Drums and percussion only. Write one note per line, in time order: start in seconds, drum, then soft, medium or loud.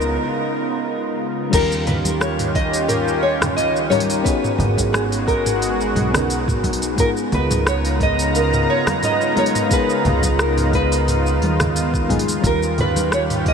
0.01 shaker soft
1.53 kick loud
1.53 open hi-hat medium
1.53 crash loud
1.53 shaker medium
1.72 shaker soft
1.87 mid tom medium
1.87 open hi-hat soft
1.87 low conga medium
2.05 open hi-hat soft
2.05 high conga medium
2.05 shaker medium
2.21 cross-stick medium
2.21 shaker medium
2.39 mid tom medium
2.39 open hi-hat medium
2.39 shaker soft
2.55 kick loud
2.55 open hi-hat soft
2.73 open hi-hat soft
2.73 shaker medium
2.89 mid tom medium
2.89 open hi-hat medium
2.89 shaker medium
3.08 shaker soft
3.41 cross-stick medium
3.41 mid tom medium
3.41 open hi-hat soft
3.41 high conga medium
3.41 low conga medium
3.41 shaker medium
3.58 open hi-hat medium
3.58 shaker medium
3.76 shaker soft
3.90 mid tom medium
3.90 open hi-hat soft
3.90 high conga medium
4.00 open hi-hat medium
4.10 open hi-hat soft
4.10 shaker medium
4.25 kick loud
4.25 open hi-hat medium
4.25 shaker medium
4.44 mid tom medium
4.44 shaker soft
4.60 open hi-hat soft
4.60 low conga medium
4.78 kick medium
4.78 open hi-hat soft
4.78 high conga medium
4.78 shaker medium
4.94 cross-stick medium
4.94 mid tom medium
4.94 shaker medium
5.12 open hi-hat medium
5.12 shaker soft
5.27 kick loud
5.27 open hi-hat soft
5.46 mid tom medium
5.46 open hi-hat soft
5.46 shaker medium
5.62 open hi-hat medium
5.62 shaker medium
5.81 shaker soft
5.96 mid tom medium
5.96 open hi-hat soft
5.96 high conga medium
6.14 cross-stick medium
6.14 open hi-hat soft
6.14 low conga medium
6.14 shaker medium
6.30 open hi-hat medium
6.30 shaker medium
6.48 kick loud
6.48 mid tom medium
6.48 shaker soft
6.64 kick medium
6.64 open hi-hat soft
6.64 high conga medium
6.73 open hi-hat medium
6.82 open hi-hat soft
6.82 shaker medium
6.98 kick loud
6.98 mid tom medium
6.98 open hi-hat medium
6.98 shaker medium
7.17 shaker soft
7.32 open hi-hat soft
7.32 low conga medium
7.51 mid tom medium
7.51 open hi-hat soft
7.51 high conga medium
7.51 shaker medium
7.67 cross-stick medium
7.67 shaker medium
7.85 open hi-hat medium
7.85 shaker soft
8.00 kick loud
8.00 mid tom medium
8.00 open hi-hat soft
8.19 open hi-hat soft
8.19 shaker medium
8.35 open hi-hat medium
8.35 shaker medium
8.53 mid tom medium
8.53 shaker soft
8.87 cross-stick medium
8.87 open hi-hat soft
8.87 high conga loud
8.87 low conga medium
8.87 shaker medium
9.03 mid tom medium
9.03 open hi-hat medium
9.03 shaker medium
9.21 shaker soft
9.37 open hi-hat soft
9.37 high conga medium
9.46 open hi-hat medium
9.55 mid tom medium
9.55 open hi-hat soft
9.55 shaker medium
9.71 kick loud
9.71 open hi-hat medium
9.71 shaker medium
9.90 shaker soft
10.05 mid tom medium
10.05 open hi-hat soft
10.05 low conga medium
10.23 kick medium
10.23 open hi-hat soft
10.23 high conga medium
10.23 shaker medium
10.39 cross-stick medium
10.39 shaker medium
10.58 mid tom medium
10.58 open hi-hat medium
10.58 shaker soft
10.73 kick loud
10.73 open hi-hat soft
10.92 open hi-hat soft
10.92 shaker medium
11.08 mid tom medium
11.08 open hi-hat medium
11.08 shaker medium
11.27 shaker soft
11.42 open hi-hat soft
11.42 high conga medium
11.60 cross-stick medium
11.60 mid tom medium
11.60 open hi-hat soft
11.60 low conga medium
11.60 shaker medium
11.76 open hi-hat medium
11.76 shaker medium
11.94 kick loud
11.94 shaker soft
12.09 kick medium
12.09 mid tom medium
12.09 open hi-hat soft
12.09 high conga medium
12.19 open hi-hat medium
12.28 open hi-hat soft
12.28 shaker medium
12.44 kick loud
12.44 open hi-hat medium
12.44 shaker medium
12.63 shaker soft
12.78 mid tom medium
12.78 open hi-hat soft
12.78 low conga medium
12.96 open hi-hat soft
12.96 high conga medium
12.96 shaker medium
13.12 cross-stick medium
13.12 shaker medium
13.30 mid tom medium
13.30 open hi-hat medium
13.30 shaker soft
13.46 kick loud
13.46 open hi-hat soft